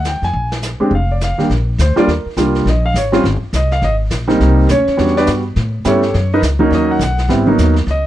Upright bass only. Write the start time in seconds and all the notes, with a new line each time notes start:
Already playing: D2
0.22 F2
0.33 A#1
0.80 muted upright bass stroke
0.91 F1
1.50 A#1
1.78 D2
2.07 D#2
2.26 muted upright bass stroke
2.37 C2
2.65 A#1
2.94 G#1
3.24 G1
3.43 muted upright bass stroke
3.53 C2
3.82 G#1
4.11 A#1
4.40 C2
4.69 D2
4.88 muted upright bass stroke
4.99 E2
5.28 G2
5.56 A2
5.85 G2
6.14 F#2
6.42 C#2
6.71 D#2
6.99 B1
7.29 G#1
7.58 D#2
7.87 C#2